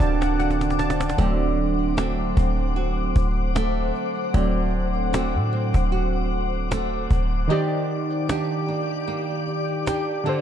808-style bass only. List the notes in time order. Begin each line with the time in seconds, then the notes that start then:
0.00 D1
1.19 D1
2.37 D1
3.16 D1
4.34 D1
5.34 A2
5.74 D1
7.11 D1